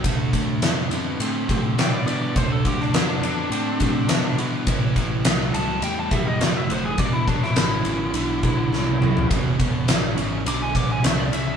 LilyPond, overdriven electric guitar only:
\new Staff \with { instrumentName = "Overdriven electric guitar" } { \clef bass \time 4/4 \key d \dorian \tempo 4 = 104 <d a>8 <d a>8 <d b>8 <d b>8 <d c'>8 <d c'>8 <d b>8 <d b>8 | <d a>8 <d a>8 <d b>8 <d b>8 <d c'>8 <d c'>8 <d b>8 <d b>8 | <a, e>8 <a, e>8 <a, fis>8 <a, fis>8 <a, g>8 <a, g>8 <a, fis>8 <a, fis>8 | <e, b,>8 <e, b,>8 <e, cis>8 <e, cis>8 <e, d>8 <e, d>8 <e, cis>8 <e, cis>8 |
<e, b,>8 <e, b,>8 <e, cis>8 <e, cis>8 <e, d>8 <e, d>8 <e, cis>8 <e, cis>8 | }